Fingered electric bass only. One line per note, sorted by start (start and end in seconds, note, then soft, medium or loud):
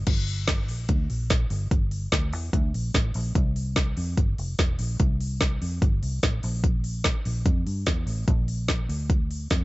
0.07 0.69 G1 loud
0.69 0.86 A#1 medium
0.89 1.06 D2 loud
1.10 1.45 A#1 medium
1.50 1.68 G1 loud
1.71 2.06 G1 medium
2.12 2.33 D2 medium
2.33 2.50 E2 medium
2.53 2.71 D2 loud
2.74 2.91 A#1 medium
2.95 3.12 A1 medium
3.15 3.32 A#1 loud
3.36 3.94 C2 loud
3.97 4.15 F2 medium
4.18 4.35 G1 loud
4.38 4.56 F1 medium
4.59 4.76 E1 loud
4.79 4.97 A#1 medium
5.00 5.58 C2 loud
5.62 5.79 F2 medium
5.82 5.99 G1 loud
6.03 6.20 C2 medium
6.23 6.40 A1 medium
6.44 7.13 A#1 loud
7.26 7.43 A#1 medium
7.46 7.63 F2 loud
7.66 7.84 G2 medium
7.87 8.04 E2 medium
8.07 8.24 A1 loud
8.28 8.86 A#1 loud
8.89 9.48 D2 medium
9.51 9.64 F2 medium